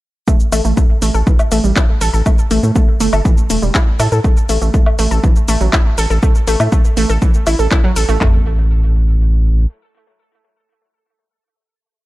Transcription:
0.28 synth arpeggio sound A3, kick, shaker
0.40 shaker
0.52 analog synth bass A1, synth arpeggio sound A3, open hi-hat, low woodblock, shaker
0.65 analog synth bass A1, synth arpeggio sound A3, shaker
0.77 synth arpeggio sound A3, kick, shaker
1.02 analog synth bass A1, synth arpeggio sound A3, open hi-hat, shaker
1.14 analog synth bass A1, synth arpeggio sound A4, shaker
1.27 synth arpeggio sound E3, kick, shaker
1.39 low woodblock, shaker
1.52 analog synth bass A1, synth arpeggio sound A3, open hi-hat, shaker
1.64 analog synth bass A1, synth arpeggio sound G3, shaker
1.76 synth arpeggio sound E4, kick, clap, shaker
2.01 analog synth bass A1, synth arpeggio sound A4, open hi-hat, shaker
2.13 analog synth bass A1, synth arpeggio sound A4, shaker
2.26 synth arpeggio sound A3, kick, low woodblock, shaker
2.38 shaker
2.51 analog synth bass A1, synth arpeggio sound A3, open hi-hat, shaker
2.63 analog synth bass A2, synth arpeggio sound A3, shaker
2.76 synth arpeggio sound A3, kick, shaker
3.00 analog synth bass G1, synth arpeggio sound A3, open hi-hat, shaker
3.13 analog synth bass G1, synth arpeggio sound A4, low woodblock, shaker
3.25 synth arpeggio sound E3, kick, shaker
3.38 shaker
3.50 analog synth bass E1, synth arpeggio sound A3, open hi-hat, shaker
3.62 analog synth bass E1, synth arpeggio sound G3, shaker
3.75 synth arpeggio sound E4, kick, clap, shaker
3.99 analog synth bass A2, synth arpeggio sound A4, open hi-hat, low woodblock, shaker
4.12 analog synth bass A2, synth arpeggio sound A4, shaker
4.24 synth arpeggio sound A3, kick, shaker
4.37 shaker
4.49 analog synth bass A1, synth arpeggio sound A3, open hi-hat, shaker
4.62 analog synth bass A1, synth arpeggio sound A3, shaker
4.74 synth arpeggio sound A3, kick, shaker
4.86 low woodblock
4.99 analog synth bass A1, synth arpeggio sound A3, open hi-hat, shaker
5.11 analog synth bass A1, synth arpeggio sound A4, shaker
5.23 synth arpeggio sound E3, kick, shaker
5.36 shaker
5.48 analog synth bass A1, synth arpeggio sound A3, open hi-hat, shaker
5.61 analog synth bass A1, synth arpeggio sound F#3, shaker
5.73 synth arpeggio sound E4, kick, clap, low woodblock, shaker
5.98 analog synth bass A1, synth arpeggio sound A4, open hi-hat, shaker
6.10 analog synth bass A1, synth arpeggio sound A4, shaker
6.23 synth arpeggio sound A3, kick, shaker
6.35 shaker
6.47 analog synth bass A1, synth arpeggio sound A3, open hi-hat, shaker
6.60 analog synth bass A2, synth arpeggio sound A3, low woodblock, shaker
6.72 synth arpeggio sound A3, kick, shaker
6.85 shaker
6.97 analog synth bass A1, synth arpeggio sound A3, open hi-hat, shaker
7.09 analog synth bass A1, synth arpeggio sound A4, shaker
7.22 synth arpeggio sound E3, kick, shaker
7.34 shaker
7.47 analog synth bass A1, synth arpeggio sound E4, open hi-hat, low woodblock, shaker
7.59 analog synth bass A1, synth arpeggio sound A4, shaker
7.71 synth arpeggio sound E4, kick, clap, shaker
7.84 synth arpeggio sound F#3
7.96 analog synth bass A1, synth arpeggio sound A4, open hi-hat, shaker
8.09 analog synth bass A1, synth arpeggio sound A3, shaker
8.21 analog synth bass A1, synth arpeggio sound A3, kick, clap, floor tom

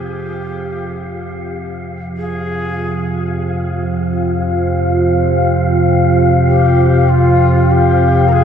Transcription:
Already playing: synth drone F2 C3, ambient pad F4 C5 F5 G5, shakuhachi G4, synth texture F5
2.17 shakuhachi G#4
6.49 shakuhachi G4
7.09 shakuhachi F4
7.71 shakuhachi G4
8.28 shakuhachi A#4
8.32 shakuhachi G#4

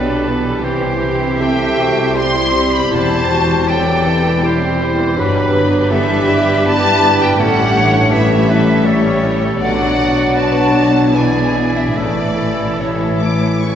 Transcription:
Already playing: double bass section B1, cello section B2, harp B2 B3 D4 G4 B4 D5, bassoon F#3, french horn section B3 G4, clarinet D4, viola section G4, violin section A4 D5, oboe B4, flute D5
0.07 viola section D4
0.26 bassoon E3, viola section B3, harp D4
0.44 viola section G3
0.62 double bass section C2, harp C3, cello section C3, viola section E3 G4, french horn section C4 E4, clarinet E4, violin section G4, oboe C5
0.82 viola section G3
1.01 viola section C4, clarinet G4
1.20 viola section E4
1.38 bassoon A3, viola section C4, harp E4, clarinet G4, oboe C5, violin section E5 G5, flute G5
1.58 viola section G3
1.78 viola section E3, clarinet F#4, harp G4
1.96 viola section G3
2.14 bassoon G3, viola section C4, clarinet E4, violin section C5 C6, harp C5, flute C6
2.34 viola section E4
2.52 viola section C4, harp E4
2.72 viola section G3, flute B5, violin section B5
2.89 double bass section E1, cello section E2, harp E2, viola section C3, clarinet E4, oboe C5, violin section C5, flute A5
2.94 violin section A5
3.09 viola section E3
3.27 harp E3, viola section G3, clarinet F#4
3.47 viola section C4
3.66 bassoon F#3, viola section G3, harp E4, clarinet G4, violin section A4 G5, oboe D5, flute G5
3.85 viola section E3
4.05 viola section C3, bassoon E3, harp G4
4.23 viola section E3
4.42 viola section G3, bassoon G3, clarinet E4, violin section G4, harp C5, oboe C5
4.62 viola section C4
4.77 viola section G3, clarinet E4, harp E4
4.82 violin section C5
4.99 viola section E3
5.16 double bass section G1, harp G2, cello section G2, viola section E3 G4, bassoon F#3, french horn section B3 D4, clarinet D4, violin section B4, oboe B4
5.36 viola section G3
5.54 harp D3, viola section B3
5.71 viola section D4
5.89 bassoon E3, viola section B3, harp E4, clarinet G4, violin section A4 E5, oboe B4, flute E5
6.07 viola section G3
6.26 viola section E3, bassoon G3, harp G4, violin section G4
6.44 viola section G3
6.64 viola section B3, clarinet E4, violin section B4 A5, harp D5, flute A5
6.83 viola section D4
7.02 viola section B3, harp E4
7.21 viola section G3, flute G5, violin section G5
7.39 double bass section A1, harp A2, cello section A2, viola section E3, french horn section G3 C#4, bassoon A3, clarinet C#4, violin section A4 F#5, oboe C#5, flute F#5
7.57 viola section G3
7.76 harp E3, viola section A3, clarinet D4, violin section C#5
7.94 viola section C#4
8.10 bassoon A3, viola section A3, harp E4, violin section B4 E5, oboe C#5, flute E5
8.14 clarinet E4
8.31 viola section G3
8.48 viola section E3, harp G4, violin section A4, oboe B4
8.66 viola section G3
8.84 bassoon G3, viola section A3, clarinet G4, oboe A4, violin section C#5, harp C#5
9.04 viola section C#4
9.23 viola section A3, harp E4
9.42 viola section G3
9.59 double bass section B1, cello section B2, harp B2, viola section D3 F#4, french horn section F#3 D4, bassoon F#3, clarinet D4, violin section D5 F#5, oboe D5, flute F#5
9.79 viola section F#3
10.00 harp B3, viola section B3
10.18 viola section D4
10.34 viola section B3, harp D4, violin section B4 A5, flute A5
10.56 viola section F#3
10.74 viola section D3, violin section F#4, harp F#4
10.94 viola section F#3
11.13 harp B2, viola section E3 E4, bassoon E3, french horn section E3, violin section G#4 G#5, oboe D5, flute G#5
11.17 clarinet E4
11.34 viola section G#3
11.54 viola section B3, harp E4 D5
11.75 viola section D4, violin section E5, flute E5
11.95 double bass section A1, cello section A2, harp A2, viola section C#3, bassoon E3, french horn section E4, clarinet E4, violin section A4 D5, flute D5, oboe E5
12.18 viola section E3
12.39 harp E3, viola section A3
12.61 viola section E3
12.79 viola section C#3, bassoon E3, harp E4, clarinet E4, violin section C#5, flute C#5, oboe E5
13.02 viola section E3
13.19 viola section A3, harp E5, violin section D6
13.42 viola section E3
13.60 viola section C#3, violin section C#6
13.64 harp E4

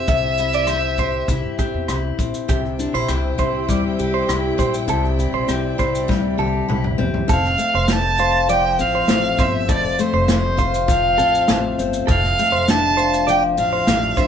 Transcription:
Already playing: steel-string acoustic guitar C4 E4 G4, violin E5
0.07 upright bass C2, steel-string acoustic guitar C3, clean electric guitar E5, kick, shaker
0.38 steel-string acoustic guitar E4, shaker
0.53 clean electric guitar D5, shaker
0.67 steel-string acoustic guitar C4, cross-stick, shaker
0.98 steel-string acoustic guitar G4, clean electric guitar C5, kick, shaker
1.28 upright bass C2, steel-string acoustic guitar E4, kick, shaker
1.43 upright bass G2
1.59 steel-string acoustic guitar C4, clean electric guitar G4, kick, shaker
1.74 upright bass E2
1.88 upright bass C2, steel-string acoustic guitar E4, cross-stick, shaker
2.19 upright bass A#1, steel-string acoustic guitar C4, kick, shaker
2.34 shaker
2.48 upright bass C2, steel-string acoustic guitar C3, string section E4 G4 C5 G5, clean electric guitar G4, kick, shaker
2.65 cross-stick
2.79 steel-string acoustic guitar D4, shaker
2.94 upright bass A#1, steel-string acoustic guitar E4, clean electric guitar C5
3.09 upright bass C2, steel-string acoustic guitar C4, cross-stick, shaker
3.38 upright bass C2, steel-string acoustic guitar E4, clean electric guitar C5, kick, shaker
3.68 upright bass D2, steel-string acoustic guitar G3, clean electric guitar D5, kick, shaker
3.99 upright bass C2, steel-string acoustic guitar G4, shaker
4.14 clean electric guitar C5
4.28 upright bass C2, steel-string acoustic guitar E4, cross-stick, shaker
4.58 upright bass A#1, steel-string acoustic guitar C4, clean electric guitar C5, kick, shaker
4.74 shaker
4.88 upright bass C2, steel-string acoustic guitar C3, clean electric guitar A4, string section D5, shaker
5.04 cross-stick
5.19 steel-string acoustic guitar E4, shaker
5.33 upright bass A#1, clean electric guitar C5
5.48 upright bass C2, steel-string acoustic guitar C4, cross-stick, shaker
5.78 upright bass C2, steel-string acoustic guitar E4, clean electric guitar C5, kick, shaker
5.95 shaker
6.08 upright bass D2, steel-string acoustic guitar G3, kick, snare
6.38 upright bass C2, steel-string acoustic guitar G4, clean electric guitar A4, high tom
6.68 upright bass C2, steel-string acoustic guitar E4, mid tom
6.84 mid tom
6.98 upright bass G1, steel-string acoustic guitar C4, floor tom
7.14 floor tom
7.28 upright bass F1, steel-string acoustic guitar F2, clean electric guitar A4, violin F5, kick, shaker
7.44 snare
7.58 steel-string acoustic guitar A3, shaker
7.74 upright bass F1, clean electric guitar C5
7.88 steel-string acoustic guitar C4, snare, shaker
7.92 violin A5
8.18 steel-string acoustic guitar F4, clean electric guitar C5, shaker
8.49 steel-string acoustic guitar F3, clean electric guitar D5, violin G5, shaker
8.79 upright bass A1, steel-string acoustic guitar C4, violin F5, shaker
8.95 clean electric guitar C5
9.08 upright bass A1, steel-string acoustic guitar A3, snare, shaker
9.38 upright bass G1, steel-string acoustic guitar C4, clean electric guitar C5, violin E5, kick, shaker
9.69 upright bass F1, steel-string acoustic guitar F2, clean electric guitar A4, violin D5, kick, shaker
9.99 steel-string acoustic guitar A3, violin C5, shaker
10.13 upright bass F1, clean electric guitar C5
10.28 steel-string acoustic guitar C4, violin C5, snare, shaker
10.57 steel-string acoustic guitar F4, clean electric guitar C5, kick, shaker
10.74 shaker
10.88 steel-string acoustic guitar F3, violin F5, kick, shaker
11.18 upright bass A1, steel-string acoustic guitar C4, clean electric guitar A4, shaker
11.35 shaker
11.48 upright bass A1, steel-string acoustic guitar A3, snare, shaker
11.78 upright bass G1, steel-string acoustic guitar C4, shaker
11.93 shaker
12.07 upright bass F1, steel-string acoustic guitar F2, clean electric guitar A4, violin F5, kick, shaker
12.24 snare
12.39 steel-string acoustic guitar A3, shaker
12.52 upright bass F1, clean electric guitar C5
12.68 steel-string acoustic guitar D4, violin A5, snare, shaker
12.97 steel-string acoustic guitar F4, clean electric guitar C5, shaker
13.14 shaker
13.27 steel-string acoustic guitar F3, clean electric guitar D5, violin G5, shaker
13.57 upright bass A1, steel-string acoustic guitar D4, violin F5, shaker
13.73 clean electric guitar C5
13.87 upright bass A1, steel-string acoustic guitar A3, snare, shaker
14.17 upright bass G1, steel-string acoustic guitar D4, clean electric guitar C5, violin E5, kick, shaker

